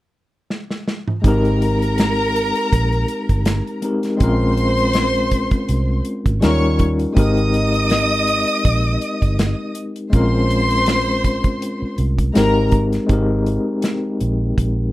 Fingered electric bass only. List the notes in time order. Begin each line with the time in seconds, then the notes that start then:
1.24 G#1
2.73 A#1
3.29 G1
4.21 A#1
5.69 C2
6.26 G#1
6.43 D#2
7.17 G#1
8.65 A#1
9.22 G1
10.13 A#1
11.82 muted fingered electric bass stroke
11.98 C2
12.36 G#1
13.10 G#1
14.21 A#1
14.58 A#1